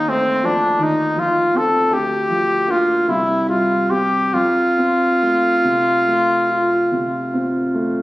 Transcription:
0.00 1.87 D#2 soft
0.00 0.10 D#4 medium
0.08 0.65 A3 soft
0.08 0.47 C4 medium
0.43 1.01 F3 soft
0.43 0.84 D4 medium
0.79 1.38 D#3 soft
0.83 1.21 D#4 medium
1.16 1.76 F3 soft
1.16 1.58 F4 medium
1.54 1.91 C4 soft
1.54 1.95 A4 medium
1.90 3.04 D2 soft
1.90 2.72 G4 medium
2.29 2.92 F3 soft
2.67 3.03 A#3 soft
2.67 3.03 D4 soft
2.67 3.11 F4 medium
3.08 4.30 C2 soft
3.08 3.48 E4 medium
3.48 4.16 G3 soft
3.48 3.92 F4 medium
3.90 4.30 C4 soft
3.90 4.35 G4 medium
3.90 4.30 G4 soft
4.34 6.87 F2 soft
4.34 8.02 F4 medium
4.78 5.47 C4 soft
5.22 5.90 A3 soft
5.64 6.33 C3 soft
6.07 6.75 A3 soft
6.50 7.16 F4 soft
6.92 7.58 C3 soft
7.34 8.00 C4 soft
7.75 8.02 A3 soft

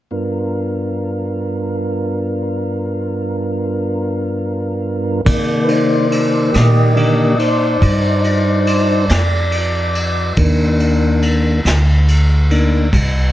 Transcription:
0.11 5.21 G2 soft
0.11 5.21 B3 soft
0.11 5.21 D4 soft
0.11 5.21 F4 soft
0.11 5.21 A#4 soft
5.25 6.51 C3 medium
5.25 6.94 D#3 soft
5.25 6.96 A#3 soft
5.25 10.33 D5 medium
5.25 kick loud
5.25 crash medium
5.64 6.08 D#4 medium
5.64 5.69 B4 medium
5.68 6.09 C5 medium
5.68 ride soft
6.10 6.51 D#4 medium
6.10 6.52 C5 medium
6.10 ride medium
6.52 7.79 A#2 medium
6.52 6.93 G4 medium
6.52 6.95 D#5 medium
6.52 snare medium
6.52 ride medium
6.95 7.35 D3 soft
6.95 7.35 D#3 soft
6.95 7.35 A#3 soft
6.95 7.36 G4 medium
6.95 7.38 D#5 medium
6.95 ride medium
7.39 9.05 D#4 medium
7.39 9.06 C5 medium
7.39 ride medium
7.82 9.06 G2 medium
7.82 kick medium
7.82 ride medium
8.24 ride medium
8.67 ride medium
9.09 10.34 F2 medium
9.09 snare medium
9.09 ride medium
9.52 ride medium
9.95 ride medium
10.36 11.61 D#2 medium
10.36 11.60 D#3 soft
10.36 11.61 A#3 soft
10.36 11.61 D4 medium
10.36 kick loud
10.36 ride medium
10.80 ride medium
11.22 ride medium
11.65 12.88 D2 medium
11.65 snare medium
11.65 ride medium
12.08 ride soft
12.51 12.89 A#3 soft
12.51 12.89 D4 soft
12.51 12.89 D#4 soft
12.51 ride medium
12.93 13.32 C2 medium
12.93 kick medium
12.93 ride medium

